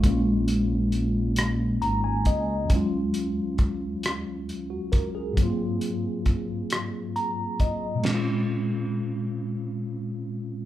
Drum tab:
CC |------|------|------|x-----|
HH |xxxxxx|xxxxxx|xxxxxx|------|
SD |---r--|---r--|---r--|o-----|
BD |o----o|o-o--o|o-o--o|------|